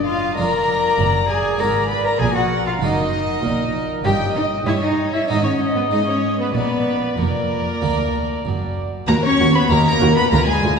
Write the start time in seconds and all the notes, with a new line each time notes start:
Already playing: F#1 F#2 D#5
0.05 F4 F5
0.36 F1 F2 A#3 D4 F4 A#4 D5 A#5
0.98 F#1 F#2
1.29 G#4 G#5
1.59 G#1 G#2 A#3 D4 F4 A#4 D5 A#5
1.89 B4 B5
2.05 A#4 A#5
2.19 A#1 A#2 G#4 A#4 G#5
2.34 F#4 F#5
2.66 F4 F5
2.80 F#1 F#2 A#3 D#4 F#4 D#5
3.43 A#1 A#2 A#4
4.04 G1 G2 A#3 C#4 D#4 G4 D#5 G5
4.36 D#4 D#5
4.66 G2 G3 E4 C#5 E5
4.81 D#4 D#5
5.12 E4 E5
5.28 G#1 G#2 G#3 B3 D#4 D#5
5.44 C#4 C#5
5.75 B3 B4
5.90 G#2 G#3 D#4 D#5
6.07 C#4 C#5
6.39 B3 B4
6.54 A#1 A#2 B3 B4 D5
7.18 F1 F2 A#3 A#4
7.82 D2 A#3 D4
8.45 F#1 F#2
9.07 D#2 A#3 F#4 A#4 A#5
9.23 C#4 C#5 C#6
9.39 D#2 F#4
9.54 B3 B4 B5
9.69 D#2 A#3 D#4 F#4 A#4 A#5
9.85 A#3 A#4 A#5
10.00 D#2 F#4
10.16 B3 B4 B5
10.31 D2 A#3 F4 A#4 A#5
10.45 G#3 G#4 G#5
10.62 D2 F4